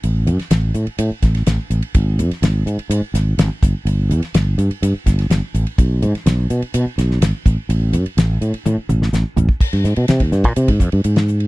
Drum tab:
CC |----------------|----------------|----------------|----------------|
RD |x-xxx-xxx-xxx-xx|x-xxx-xxx-x-x-x-|x-xxx-xxx-xxx-xx|x-xxx-xxx-x-x-x-|
HH |p-p-p-p-p-p-p-p-|p-p-p-p-p-p-p-p-|p-p-p-p-p-p-p-p-|p-p-p-p-p-p-p-p-|
SD |---oo-----ooo---|---oo-----o-o---|---oo-----ooo---|---oo-----ooo---|
T1 |----------------|----------------|----------------|----------------|
T2 |----------------|----------------|----------------|----------------|
FT |----------------|----------------|----------------|----------------|
BD |----------o-----|o-------------o-|----------o-----|o-------------o-|

CC |----------------|x---------------|
RD |x-xxx-xx--------|-x-xxx-xxx-xxx-x|
HH |p-p-p-p-p-p-p-p-|--p-p-p-p-p-p-p-|
SD |----o------oo---|-oo-o-o------o--|
T1 |--------o-------|----------------|
T2 |----------o-----|----------------|
FT |--------------o-|----------------|
BD |---------------o|o----o-o-oo-----|